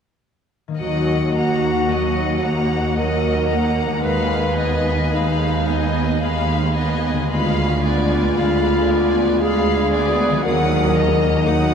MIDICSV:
0, 0, Header, 1, 8, 480
1, 0, Start_track
1, 0, Key_signature, -6, "minor"
1, 0, Tempo, 1115242
1, 338, Time_signature, 3, 2, 24, 8
1, 817, Tempo, 1081081
1, 3697, Tempo, 1032702
1, 5257, End_track
2, 0, Start_track
2, 0, Title_t, "Violin section"
2, 0, Program_c, 0, 48
2, 339, Note_on_c, 0, 78, 36
2, 562, Note_off_c, 0, 78, 0
2, 583, Note_on_c, 0, 82, 31
2, 819, Note_off_c, 0, 82, 0
2, 822, Note_on_c, 0, 78, 31
2, 1060, Note_off_c, 0, 78, 0
2, 1063, Note_on_c, 0, 82, 30
2, 1297, Note_off_c, 0, 82, 0
2, 1298, Note_on_c, 0, 78, 30
2, 1517, Note_off_c, 0, 78, 0
2, 1533, Note_on_c, 0, 82, 32
2, 1772, Note_off_c, 0, 82, 0
2, 1776, Note_on_c, 0, 83, 30
2, 1997, Note_off_c, 0, 83, 0
2, 2017, Note_on_c, 0, 80, 31
2, 2254, Note_on_c, 0, 83, 33
2, 2255, Note_off_c, 0, 80, 0
2, 2494, Note_on_c, 0, 80, 31
2, 2496, Note_off_c, 0, 83, 0
2, 2736, Note_off_c, 0, 80, 0
2, 2738, Note_on_c, 0, 83, 33
2, 2961, Note_off_c, 0, 83, 0
2, 2978, Note_on_c, 0, 80, 32
2, 3219, Note_off_c, 0, 80, 0
2, 3221, Note_on_c, 0, 83, 32
2, 3445, Note_off_c, 0, 83, 0
2, 3466, Note_on_c, 0, 80, 35
2, 3699, Note_on_c, 0, 83, 32
2, 3700, Note_off_c, 0, 80, 0
2, 3940, Note_off_c, 0, 83, 0
2, 3943, Note_on_c, 0, 80, 36
2, 4182, Note_off_c, 0, 80, 0
2, 4186, Note_on_c, 0, 83, 35
2, 4406, Note_off_c, 0, 83, 0
2, 4426, Note_on_c, 0, 80, 33
2, 4662, Note_off_c, 0, 80, 0
2, 4665, Note_on_c, 0, 87, 35
2, 4885, Note_off_c, 0, 87, 0
2, 4896, Note_on_c, 0, 82, 36
2, 5135, Note_off_c, 0, 82, 0
2, 5135, Note_on_c, 0, 87, 33
2, 5257, Note_off_c, 0, 87, 0
2, 5257, End_track
3, 0, Start_track
3, 0, Title_t, "Violin section"
3, 0, Program_c, 1, 48
3, 338, Note_on_c, 1, 75, 31
3, 562, Note_off_c, 1, 75, 0
3, 580, Note_on_c, 1, 78, 32
3, 818, Note_off_c, 1, 78, 0
3, 818, Note_on_c, 1, 75, 32
3, 1058, Note_off_c, 1, 75, 0
3, 1058, Note_on_c, 1, 78, 28
3, 1294, Note_off_c, 1, 78, 0
3, 1300, Note_on_c, 1, 75, 35
3, 1518, Note_off_c, 1, 75, 0
3, 1534, Note_on_c, 1, 78, 31
3, 1772, Note_off_c, 1, 78, 0
3, 1773, Note_on_c, 1, 77, 36
3, 1995, Note_off_c, 1, 77, 0
3, 2014, Note_on_c, 1, 75, 31
3, 2254, Note_off_c, 1, 75, 0
3, 2257, Note_on_c, 1, 77, 31
3, 2497, Note_off_c, 1, 77, 0
3, 2504, Note_on_c, 1, 75, 35
3, 2740, Note_on_c, 1, 77, 34
3, 2741, Note_off_c, 1, 75, 0
3, 2961, Note_off_c, 1, 77, 0
3, 2980, Note_on_c, 1, 75, 30
3, 3220, Note_off_c, 1, 75, 0
3, 3223, Note_on_c, 1, 77, 38
3, 3446, Note_off_c, 1, 77, 0
3, 3464, Note_on_c, 1, 74, 34
3, 3699, Note_off_c, 1, 74, 0
3, 3700, Note_on_c, 1, 77, 32
3, 3939, Note_on_c, 1, 74, 35
3, 3941, Note_off_c, 1, 77, 0
3, 4176, Note_on_c, 1, 77, 40
3, 4181, Note_off_c, 1, 74, 0
3, 4401, Note_off_c, 1, 77, 0
3, 4421, Note_on_c, 1, 74, 37
3, 4658, Note_on_c, 1, 78, 43
3, 4659, Note_off_c, 1, 74, 0
3, 4881, Note_off_c, 1, 78, 0
3, 4898, Note_on_c, 1, 75, 37
3, 5136, Note_off_c, 1, 75, 0
3, 5136, Note_on_c, 1, 78, 37
3, 5257, Note_off_c, 1, 78, 0
3, 5257, End_track
4, 0, Start_track
4, 0, Title_t, "Clarinet"
4, 0, Program_c, 2, 71
4, 338, Note_on_c, 2, 66, 50
4, 1296, Note_on_c, 2, 70, 60
4, 1302, Note_off_c, 2, 66, 0
4, 1768, Note_off_c, 2, 70, 0
4, 1771, Note_on_c, 2, 71, 58
4, 2255, Note_on_c, 2, 63, 49
4, 2262, Note_off_c, 2, 71, 0
4, 2978, Note_off_c, 2, 63, 0
4, 3215, Note_on_c, 2, 65, 56
4, 4180, Note_on_c, 2, 68, 59
4, 4187, Note_off_c, 2, 65, 0
4, 4652, Note_off_c, 2, 68, 0
4, 4655, Note_on_c, 2, 70, 66
4, 5134, Note_on_c, 2, 63, 58
4, 5141, Note_off_c, 2, 70, 0
4, 5257, Note_off_c, 2, 63, 0
4, 5257, End_track
5, 0, Start_track
5, 0, Title_t, "Harp"
5, 0, Program_c, 3, 46
5, 292, Note_on_c, 3, 51, 29
5, 300, Note_on_c, 3, 58, 27
5, 309, Note_on_c, 3, 63, 24
5, 320, Note_on_c, 3, 70, 25
5, 1687, Note_off_c, 3, 51, 0
5, 1692, Note_on_c, 3, 51, 31
5, 1712, Note_on_c, 3, 56, 26
5, 1732, Note_on_c, 3, 65, 26
5, 1753, Note_on_c, 3, 71, 26
5, 1780, Note_off_c, 3, 58, 0
5, 1780, Note_off_c, 3, 70, 0
5, 2025, Note_off_c, 3, 63, 0
5, 3139, Note_on_c, 3, 50, 33
5, 3153, Note_off_c, 3, 56, 0
5, 3158, Note_on_c, 3, 56, 28
5, 3173, Note_off_c, 3, 65, 0
5, 3179, Note_on_c, 3, 65, 27
5, 3194, Note_off_c, 3, 71, 0
5, 3198, Note_off_c, 3, 51, 0
5, 3199, Note_on_c, 3, 71, 24
5, 4576, Note_on_c, 3, 51, 33
5, 4597, Note_on_c, 3, 54, 32
5, 4618, Note_on_c, 3, 66, 31
5, 4637, Note_off_c, 3, 50, 0
5, 4640, Note_on_c, 3, 70, 27
5, 4647, Note_off_c, 3, 56, 0
5, 4658, Note_off_c, 3, 65, 0
5, 4668, Note_off_c, 3, 71, 0
5, 5257, Note_off_c, 3, 51, 0
5, 5257, Note_off_c, 3, 54, 0
5, 5257, Note_off_c, 3, 66, 0
5, 5257, Note_off_c, 3, 70, 0
5, 5257, End_track
6, 0, Start_track
6, 0, Title_t, "Viola section"
6, 0, Program_c, 4, 48
6, 337, Note_on_c, 4, 54, 36
6, 561, Note_off_c, 4, 54, 0
6, 581, Note_on_c, 4, 58, 31
6, 817, Note_on_c, 4, 54, 30
6, 818, Note_off_c, 4, 58, 0
6, 1057, Note_off_c, 4, 54, 0
6, 1061, Note_on_c, 4, 58, 32
6, 1295, Note_off_c, 4, 58, 0
6, 1296, Note_on_c, 4, 54, 32
6, 1516, Note_off_c, 4, 54, 0
6, 1531, Note_on_c, 4, 58, 34
6, 1770, Note_off_c, 4, 58, 0
6, 1771, Note_on_c, 4, 56, 38
6, 1994, Note_off_c, 4, 56, 0
6, 2011, Note_on_c, 4, 59, 30
6, 2252, Note_off_c, 4, 59, 0
6, 2253, Note_on_c, 4, 56, 32
6, 2495, Note_off_c, 4, 56, 0
6, 2495, Note_on_c, 4, 59, 35
6, 2735, Note_on_c, 4, 56, 34
6, 2736, Note_off_c, 4, 59, 0
6, 2959, Note_off_c, 4, 56, 0
6, 2976, Note_on_c, 4, 59, 35
6, 3217, Note_on_c, 4, 56, 37
6, 3218, Note_off_c, 4, 59, 0
6, 3443, Note_off_c, 4, 56, 0
6, 3460, Note_on_c, 4, 59, 31
6, 3694, Note_on_c, 4, 56, 35
6, 3697, Note_off_c, 4, 59, 0
6, 3938, Note_off_c, 4, 56, 0
6, 3941, Note_on_c, 4, 59, 36
6, 4182, Note_off_c, 4, 59, 0
6, 4183, Note_on_c, 4, 56, 34
6, 4405, Note_off_c, 4, 56, 0
6, 4420, Note_on_c, 4, 59, 39
6, 4658, Note_on_c, 4, 54, 39
6, 4659, Note_off_c, 4, 59, 0
6, 4881, Note_off_c, 4, 54, 0
6, 4900, Note_on_c, 4, 58, 33
6, 5134, Note_on_c, 4, 54, 41
6, 5137, Note_off_c, 4, 58, 0
6, 5257, Note_off_c, 4, 54, 0
6, 5257, End_track
7, 0, Start_track
7, 0, Title_t, "Cello section"
7, 0, Program_c, 5, 48
7, 340, Note_on_c, 5, 39, 41
7, 762, Note_off_c, 5, 39, 0
7, 818, Note_on_c, 5, 39, 37
7, 1238, Note_off_c, 5, 39, 0
7, 1296, Note_on_c, 5, 39, 42
7, 1715, Note_off_c, 5, 39, 0
7, 1773, Note_on_c, 5, 39, 43
7, 2196, Note_off_c, 5, 39, 0
7, 2254, Note_on_c, 5, 39, 43
7, 2680, Note_off_c, 5, 39, 0
7, 2738, Note_on_c, 5, 39, 45
7, 3162, Note_off_c, 5, 39, 0
7, 3221, Note_on_c, 5, 38, 47
7, 3643, Note_off_c, 5, 38, 0
7, 3698, Note_on_c, 5, 38, 46
7, 4124, Note_off_c, 5, 38, 0
7, 4180, Note_on_c, 5, 38, 42
7, 4602, Note_off_c, 5, 38, 0
7, 4658, Note_on_c, 5, 39, 54
7, 5080, Note_off_c, 5, 39, 0
7, 5139, Note_on_c, 5, 39, 51
7, 5257, Note_off_c, 5, 39, 0
7, 5257, End_track
8, 0, Start_track
8, 0, Title_t, "Double bass section"
8, 0, Program_c, 6, 48
8, 338, Note_on_c, 6, 39, 49
8, 761, Note_off_c, 6, 39, 0
8, 815, Note_on_c, 6, 39, 44
8, 1237, Note_off_c, 6, 39, 0
8, 1293, Note_on_c, 6, 39, 36
8, 1714, Note_off_c, 6, 39, 0
8, 1771, Note_on_c, 6, 39, 46
8, 2195, Note_off_c, 6, 39, 0
8, 2252, Note_on_c, 6, 39, 47
8, 2679, Note_off_c, 6, 39, 0
8, 2734, Note_on_c, 6, 39, 39
8, 3159, Note_off_c, 6, 39, 0
8, 3216, Note_on_c, 6, 38, 44
8, 3640, Note_off_c, 6, 38, 0
8, 3695, Note_on_c, 6, 38, 47
8, 4123, Note_off_c, 6, 38, 0
8, 4177, Note_on_c, 6, 38, 38
8, 4601, Note_off_c, 6, 38, 0
8, 4656, Note_on_c, 6, 39, 47
8, 5078, Note_off_c, 6, 39, 0
8, 5132, Note_on_c, 6, 39, 48
8, 5257, Note_off_c, 6, 39, 0
8, 5257, End_track
0, 0, End_of_file